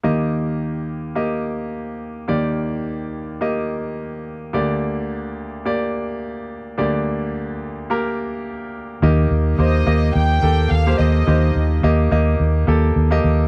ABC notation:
X:1
M:4/4
L:1/16
Q:"Swing 16ths" 1/4=107
K:Eblyd
V:1 name="Violin section"
z16 | z16 | z16 | z16 |
z4 e4 g4 f2 e2- | e4 z12 |]
V:2 name="Grand piano"
[B,Ge]6 z2 [B,Ge]6 z2 | [B,Gd]6 z2 [B,Ge]6 z2 | [B,Gd]6 z2 [B,Gd]6 z2 | [B,Gd]6 z2 [B,GB]6 z2 |
[B,Ge]3 z [B,Gc]2 [B,Ge]3 z [B,GA]2 z [B,Gc]2 z | [B,Gc]3 z [B,Ge]2 [B,Ge]3 z [B,GA]2 z [B,Ge]2 z |]
V:3 name="Grand piano" clef=bass
[E,,E,]16 | [E,,E,]16 | [D,,D,]16 | [D,,D,]16 |
E,6 z8 z2 | E,6 z8 z2 |]
V:4 name="Fingered electric bass" clef=bass
z16 | z16 | z16 | z16 |
E,,2 E,,2 E,,2 E,,2 E,,2 E,,2 E,,2 E,,2 | E,,2 E,,2 E,,2 E,,2 E,,2 E,,2 E,,2 E,,2 |]